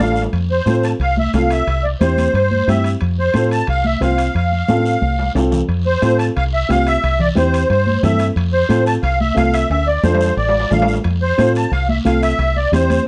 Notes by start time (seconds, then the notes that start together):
0.00 A1 D4 F4 A4 F5
0.11 low timbale
0.16 short guiro
0.22 low timbale
0.33 F2, high timbale, long guiro
0.50 C5, high conga
0.66 A2 C4 F4 A4, high conga, high timbale, short guiro
0.83 A5, high timbale, short guiro
0.99 C2 F5, high conga, high timbale, long guiro
1.17 E5, high conga
1.33 C2 C4 F4 A4 F5, high conga, high timbale, low timbale, short guiro
1.50 E5, high timbale, short guiro
1.67 C2, high timbale, long guiro
1.83 D5, high conga
2.00 E2 C4 E4 G4 C5, high conga, high timbale, short guiro
2.17 high conga, high timbale, short guiro
2.34 G2 C5, high conga, high timbale, long guiro
2.51 high conga
2.67 G2 C4 E4 G4 E5, high conga, high timbale, low timbale, short guiro
2.84 high timbale, short guiro
3.01 F2, high timbale, long guiro
3.18 C5, high conga
3.34 A2 C4 F4 A4, high conga, high timbale, short guiro
3.51 A5, high timbale, short guiro
3.67 C2 F5, high conga, high timbale, long guiro
3.84 E5, high conga
4.01 C2 C4 F4 C5 F5, high conga, high timbale, low timbale, short guiro
4.18 high timbale, short guiro
4.34 F2 F5, high timbale, long guiro
4.52 high conga
4.68 A2 C4 F4 A4, high conga, high timbale, short guiro
4.85 short guiro
5.01 C2, high conga, long guiro
5.19 low timbale
5.35 C2 C4 F4 A4, low timbale, short guiro
5.52 low conga, low timbale, short guiro
5.69 F2, high timbale, long guiro
5.86 C5, high conga
6.02 A2 C4 F4 A4, high conga, high timbale, short guiro
6.18 A5, high timbale, short guiro
6.36 C2 F5, high conga, high timbale, long guiro
6.54 E5
6.69 C2 C4 F4 G4 F5, high conga, high timbale, low timbale, short guiro
6.87 E5, high timbale, short guiro
7.04 C2, high timbale, long guiro
7.20 D5, high conga, low conga
7.35 E2 C4 E4 G4 C5, high conga, high timbale, short guiro
7.54 high timbale, short guiro
7.70 G2 C5, high conga, high timbale, long guiro
7.87 high conga
8.03 G2 C4 E4 A4 E5, high conga, low conga, high timbale, low timbale, short guiro
8.19 high timbale, short guiro
8.36 F2, high timbale, long guiro
8.53 C5, high conga
8.69 A2 C4 F4 A4, high conga, high timbale, short guiro
8.87 A5, high timbale, short guiro
9.03 C2 F5, high conga, high timbale, long guiro
9.21 E5, high conga
9.35 C2 C4 F4 A4 F5, high conga, high timbale, low timbale, short guiro
9.53 E5, high timbale, short guiro
9.69 D2 E5, high timbale, long guiro
9.87 D5, high conga
10.03 F2 D4 F4 A4 C5, high conga, high timbale, short guiro
10.15 low timbale
10.21 short guiro
10.26 low timbale
10.37 A1 D5, high conga, long guiro
10.48 low timbale
10.60 low timbale
10.71 A1 D4 F4 A4 F5, high conga, low conga, low timbale, short guiro
10.82 low timbale
10.88 short guiro
10.93 low timbale
11.04 F2, high timbale, long guiro
11.22 C5, high conga
11.37 A2 C4 F4 A4, high conga, high timbale, short guiro
11.55 A5, high timbale, short guiro
11.71 C2 F5, high conga, high timbale, long guiro
11.89 E5, high conga
12.05 C2 C4 F4 A4 F5, high conga, high timbale, short guiro
12.22 E5, high timbale, short guiro
12.38 C2, high timbale, long guiro
12.56 D5, high conga
12.72 E2 C4 E4 G4 C5, high conga, high timbale, short guiro
12.90 high conga, high timbale, short guiro